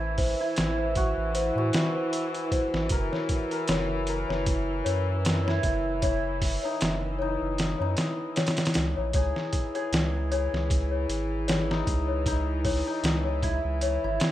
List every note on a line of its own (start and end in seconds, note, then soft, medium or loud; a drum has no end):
0.00 0.35 A1 medium
0.00 9.13 E3 medium
0.00 0.40 E4 medium
0.00 0.78 A4 medium
0.00 0.18 C5 loud
0.18 0.38 C5 loud
0.18 kick loud
0.18 open hi-hat medium
0.40 3.89 E4 medium
0.56 1.14 A1 medium
0.56 snare loud
0.56 closed hi-hat medium
0.79 1.33 C5 medium
0.95 1.57 F#4 medium
0.95 kick medium
0.95 closed hi-hat medium
1.17 1.51 A1 medium
1.35 1.55 C5 loud
1.35 closed hi-hat medium
1.56 1.71 A2 loud
1.56 4.83 F#4 medium
1.73 snare loud
1.73 closed hi-hat medium
1.95 2.50 C5 medium
2.13 closed hi-hat medium
2.34 closed hi-hat soft
2.52 2.72 C5 medium
2.52 kick loud
2.52 closed hi-hat medium
2.73 2.89 A1 medium
2.73 snare medium
2.89 3.09 F#1 loud
2.89 3.52 A#4 loud
2.89 kick loud
2.89 closed hi-hat medium
3.12 3.67 C#5 medium
3.12 snare soft
3.29 kick loud
3.29 closed hi-hat medium
3.51 4.09 A#4 medium
3.51 closed hi-hat soft
3.68 4.25 F#1 medium
3.68 3.89 C#5 medium
3.68 snare loud
3.68 closed hi-hat medium
4.07 6.92 A#4 medium
4.07 closed hi-hat medium
4.29 4.82 F#1 medium
4.29 4.83 C#5 medium
4.29 snare soft
4.46 kick loud
4.46 closed hi-hat medium
4.85 5.60 F#2 loud
4.85 5.05 C#5 loud
4.85 closed hi-hat medium
5.25 snare loud
5.25 closed hi-hat medium
5.45 6.04 E4 medium
5.45 6.00 C#5 medium
5.45 snare medium
5.63 6.59 F#1 medium
5.63 kick medium
5.63 closed hi-hat medium
6.02 6.71 E4 medium
6.02 6.23 C#5 loud
6.02 kick loud
6.02 closed hi-hat medium
6.42 kick loud
6.42 open hi-hat medium
6.63 7.21 D#4 medium
6.63 7.18 C#5 medium
6.81 7.37 F#1 medium
6.81 snare loud
6.81 closed hi-hat medium
7.19 7.81 D#4 medium
7.19 7.39 C#5 medium
7.42 7.75 F#1 medium
7.58 snare medium
7.58 closed hi-hat medium
7.79 7.95 F#2 loud
7.79 11.42 D#4 medium
7.79 8.34 C#5 medium
7.97 snare loud
7.97 closed hi-hat medium
8.36 8.57 C#5 loud
8.36 snare medium
8.36 closed hi-hat medium
8.47 snare medium
8.47 closed hi-hat medium
8.57 snare medium
8.57 closed hi-hat medium
8.65 snare medium
8.65 closed hi-hat medium
8.74 8.95 C#2 loud
8.74 snare loud
8.74 closed hi-hat medium
8.97 9.13 A#1 medium
8.97 9.13 C#5 medium
9.13 9.33 C#2 loud
9.13 14.32 E3 medium
9.13 9.75 G#4 medium
9.13 9.35 C#5 loud
9.13 kick loud
9.13 closed hi-hat medium
9.36 snare soft
9.53 kick medium
9.53 closed hi-hat medium
9.75 10.32 G#4 loud
9.75 10.29 C#5 medium
9.75 closed hi-hat soft
9.92 10.48 C#2 loud
9.92 snare loud
9.92 closed hi-hat medium
10.32 13.35 G#4 medium
10.32 10.52 C#5 loud
10.32 closed hi-hat medium
10.53 11.06 C#2 medium
10.53 snare soft
10.70 kick loud
10.70 closed hi-hat medium
10.92 11.46 C#5 medium
11.09 11.83 G#1 medium
11.09 closed hi-hat medium
11.48 11.68 C#5 loud
11.48 snare loud
11.48 closed hi-hat medium
11.71 12.27 D#4 medium
11.71 snare medium
11.87 12.82 C#2 medium
11.87 kick loud
11.87 closed hi-hat medium
12.08 12.63 C#5 medium
12.26 12.87 D#4 medium
12.26 kick loud
12.26 closed hi-hat medium
12.65 12.85 C#5 loud
12.65 kick loud
12.65 open hi-hat medium
12.87 13.49 D#4 medium
13.03 13.60 C#2 medium
13.03 snare loud
13.03 closed hi-hat medium
13.25 13.80 C#5 medium
13.43 14.04 E4 medium
13.43 kick medium
13.43 closed hi-hat medium
13.65 13.98 C#2 medium
13.81 14.02 C#5 loud
13.81 closed hi-hat medium
14.04 14.19 G#1 loud
14.04 14.32 E4 medium
14.20 snare loud
14.20 closed hi-hat medium